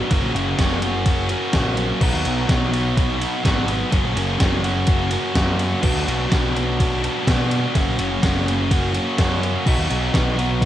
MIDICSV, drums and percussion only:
0, 0, Header, 1, 2, 480
1, 0, Start_track
1, 0, Key_signature, 6, "major"
1, 0, Tempo, 477707
1, 113, Time_signature, 4, 2, 24, 8
1, 10703, End_track
2, 0, Start_track
2, 0, Title_t, "Drums"
2, 108, Note_on_c, 9, 51, 98
2, 110, Note_on_c, 9, 36, 115
2, 209, Note_off_c, 9, 51, 0
2, 211, Note_off_c, 9, 36, 0
2, 361, Note_on_c, 9, 51, 73
2, 461, Note_off_c, 9, 51, 0
2, 589, Note_on_c, 9, 51, 105
2, 590, Note_on_c, 9, 36, 127
2, 590, Note_on_c, 9, 38, 123
2, 690, Note_off_c, 9, 51, 0
2, 691, Note_off_c, 9, 36, 0
2, 691, Note_off_c, 9, 38, 0
2, 825, Note_on_c, 9, 51, 73
2, 926, Note_off_c, 9, 51, 0
2, 1063, Note_on_c, 9, 36, 113
2, 1063, Note_on_c, 9, 51, 98
2, 1163, Note_off_c, 9, 51, 0
2, 1164, Note_off_c, 9, 36, 0
2, 1299, Note_on_c, 9, 51, 73
2, 1399, Note_off_c, 9, 51, 0
2, 1539, Note_on_c, 9, 51, 96
2, 1540, Note_on_c, 9, 38, 127
2, 1543, Note_on_c, 9, 36, 122
2, 1639, Note_off_c, 9, 51, 0
2, 1640, Note_off_c, 9, 38, 0
2, 1643, Note_off_c, 9, 36, 0
2, 1781, Note_on_c, 9, 51, 68
2, 1881, Note_off_c, 9, 51, 0
2, 2022, Note_on_c, 9, 49, 99
2, 2023, Note_on_c, 9, 36, 114
2, 2122, Note_off_c, 9, 49, 0
2, 2123, Note_off_c, 9, 36, 0
2, 2263, Note_on_c, 9, 51, 72
2, 2363, Note_off_c, 9, 51, 0
2, 2504, Note_on_c, 9, 36, 122
2, 2505, Note_on_c, 9, 51, 106
2, 2506, Note_on_c, 9, 38, 126
2, 2604, Note_off_c, 9, 36, 0
2, 2605, Note_off_c, 9, 51, 0
2, 2606, Note_off_c, 9, 38, 0
2, 2749, Note_on_c, 9, 51, 76
2, 2850, Note_off_c, 9, 51, 0
2, 2986, Note_on_c, 9, 36, 115
2, 2989, Note_on_c, 9, 51, 94
2, 3086, Note_off_c, 9, 36, 0
2, 3089, Note_off_c, 9, 51, 0
2, 3231, Note_on_c, 9, 51, 76
2, 3331, Note_off_c, 9, 51, 0
2, 3466, Note_on_c, 9, 36, 116
2, 3470, Note_on_c, 9, 51, 100
2, 3471, Note_on_c, 9, 38, 120
2, 3567, Note_off_c, 9, 36, 0
2, 3570, Note_off_c, 9, 51, 0
2, 3571, Note_off_c, 9, 38, 0
2, 3699, Note_on_c, 9, 51, 74
2, 3799, Note_off_c, 9, 51, 0
2, 3941, Note_on_c, 9, 36, 111
2, 3943, Note_on_c, 9, 51, 98
2, 4042, Note_off_c, 9, 36, 0
2, 4043, Note_off_c, 9, 51, 0
2, 4188, Note_on_c, 9, 51, 78
2, 4289, Note_off_c, 9, 51, 0
2, 4422, Note_on_c, 9, 51, 113
2, 4423, Note_on_c, 9, 36, 127
2, 4423, Note_on_c, 9, 38, 122
2, 4522, Note_off_c, 9, 51, 0
2, 4523, Note_off_c, 9, 38, 0
2, 4524, Note_off_c, 9, 36, 0
2, 4664, Note_on_c, 9, 51, 69
2, 4764, Note_off_c, 9, 51, 0
2, 4891, Note_on_c, 9, 51, 100
2, 4900, Note_on_c, 9, 36, 117
2, 4992, Note_off_c, 9, 51, 0
2, 5000, Note_off_c, 9, 36, 0
2, 5132, Note_on_c, 9, 51, 75
2, 5233, Note_off_c, 9, 51, 0
2, 5379, Note_on_c, 9, 51, 92
2, 5381, Note_on_c, 9, 36, 120
2, 5381, Note_on_c, 9, 38, 127
2, 5480, Note_off_c, 9, 51, 0
2, 5481, Note_off_c, 9, 38, 0
2, 5482, Note_off_c, 9, 36, 0
2, 5620, Note_on_c, 9, 51, 68
2, 5720, Note_off_c, 9, 51, 0
2, 5857, Note_on_c, 9, 49, 100
2, 5863, Note_on_c, 9, 36, 114
2, 5957, Note_off_c, 9, 49, 0
2, 5963, Note_off_c, 9, 36, 0
2, 6113, Note_on_c, 9, 51, 70
2, 6214, Note_off_c, 9, 51, 0
2, 6347, Note_on_c, 9, 36, 127
2, 6348, Note_on_c, 9, 51, 105
2, 6349, Note_on_c, 9, 38, 127
2, 6448, Note_off_c, 9, 36, 0
2, 6449, Note_off_c, 9, 51, 0
2, 6450, Note_off_c, 9, 38, 0
2, 6596, Note_on_c, 9, 51, 71
2, 6697, Note_off_c, 9, 51, 0
2, 6831, Note_on_c, 9, 36, 108
2, 6834, Note_on_c, 9, 51, 95
2, 6932, Note_off_c, 9, 36, 0
2, 6935, Note_off_c, 9, 51, 0
2, 7074, Note_on_c, 9, 51, 74
2, 7174, Note_off_c, 9, 51, 0
2, 7310, Note_on_c, 9, 36, 121
2, 7314, Note_on_c, 9, 51, 109
2, 7315, Note_on_c, 9, 38, 119
2, 7410, Note_off_c, 9, 36, 0
2, 7414, Note_off_c, 9, 51, 0
2, 7415, Note_off_c, 9, 38, 0
2, 7549, Note_on_c, 9, 51, 75
2, 7650, Note_off_c, 9, 51, 0
2, 7789, Note_on_c, 9, 36, 108
2, 7790, Note_on_c, 9, 51, 93
2, 7890, Note_off_c, 9, 36, 0
2, 7890, Note_off_c, 9, 51, 0
2, 8027, Note_on_c, 9, 51, 82
2, 8127, Note_off_c, 9, 51, 0
2, 8270, Note_on_c, 9, 36, 127
2, 8271, Note_on_c, 9, 51, 116
2, 8272, Note_on_c, 9, 38, 117
2, 8370, Note_off_c, 9, 36, 0
2, 8371, Note_off_c, 9, 51, 0
2, 8372, Note_off_c, 9, 38, 0
2, 8523, Note_on_c, 9, 51, 75
2, 8624, Note_off_c, 9, 51, 0
2, 8751, Note_on_c, 9, 36, 125
2, 8754, Note_on_c, 9, 51, 113
2, 8851, Note_off_c, 9, 36, 0
2, 8855, Note_off_c, 9, 51, 0
2, 8988, Note_on_c, 9, 51, 79
2, 9089, Note_off_c, 9, 51, 0
2, 9227, Note_on_c, 9, 51, 110
2, 9228, Note_on_c, 9, 36, 113
2, 9228, Note_on_c, 9, 38, 116
2, 9328, Note_off_c, 9, 51, 0
2, 9329, Note_off_c, 9, 36, 0
2, 9329, Note_off_c, 9, 38, 0
2, 9478, Note_on_c, 9, 51, 69
2, 9579, Note_off_c, 9, 51, 0
2, 9710, Note_on_c, 9, 36, 117
2, 9713, Note_on_c, 9, 49, 98
2, 9811, Note_off_c, 9, 36, 0
2, 9813, Note_off_c, 9, 49, 0
2, 9953, Note_on_c, 9, 51, 74
2, 10053, Note_off_c, 9, 51, 0
2, 10189, Note_on_c, 9, 36, 127
2, 10197, Note_on_c, 9, 51, 110
2, 10198, Note_on_c, 9, 38, 127
2, 10290, Note_off_c, 9, 36, 0
2, 10297, Note_off_c, 9, 51, 0
2, 10298, Note_off_c, 9, 38, 0
2, 10438, Note_on_c, 9, 51, 65
2, 10539, Note_off_c, 9, 51, 0
2, 10666, Note_on_c, 9, 36, 112
2, 10672, Note_on_c, 9, 51, 92
2, 10703, Note_off_c, 9, 36, 0
2, 10703, Note_off_c, 9, 51, 0
2, 10703, End_track
0, 0, End_of_file